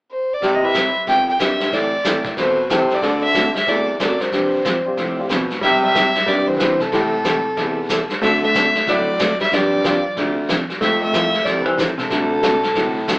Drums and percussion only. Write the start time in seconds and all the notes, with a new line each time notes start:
0.42 brush sweep, kick, snare
0.75 kick, snare, hi-hat pedal
1.07 brush sweep, kick, snare
1.40 kick, snare, hi-hat pedal
1.60 snare
1.72 brush sweep, kick, snare
2.05 kick, snare, hi-hat pedal
2.24 kick, snare
2.37 brush sweep, kick, snare
2.70 kick, snare, hi-hat pedal
2.90 snare
3.02 brush sweep, kick, snare
3.34 kick, snare, hi-hat pedal
3.55 snare
3.67 brush sweep, kick, snare
4.00 kick, snare, hi-hat pedal
4.20 snare
4.32 brush sweep, kick, snare
4.65 kick, snare, hi-hat pedal
4.97 brush sweep, kick, snare
5.30 kick, snare, hi-hat pedal
5.50 snare
5.63 brush sweep, kick, snare
5.95 kick, snare, hi-hat pedal
6.15 snare
6.28 brush sweep, kick, snare
6.60 kick, snare, hi-hat pedal
6.80 snare
6.92 brush sweep, kick, snare
7.25 kick, snare, hi-hat pedal
7.57 brush sweep, kick, snare
7.89 kick, snare, hi-hat pedal
8.10 snare
8.22 brush sweep, kick, snare
8.55 kick, snare, hi-hat pedal
8.75 snare
8.87 brush sweep, kick, snare
9.19 kick, snare, hi-hat pedal
9.40 snare
9.52 brush sweep, kick, snare
9.84 kick, snare, hi-hat pedal
10.17 brush sweep, kick, snare
10.49 kick, snare, hi-hat pedal
10.69 snare
10.81 brush sweep, kick, snare
11.14 kick, snare, hi-hat pedal
11.34 snare
11.46 brush sweep, kick, snare
11.78 kick, snare, hi-hat pedal
11.98 snare
12.10 brush sweep, kick, snare
12.43 kick, snare, hi-hat pedal
12.63 snare
12.75 brush sweep, kick, snare
13.08 kick, snare, hi-hat pedal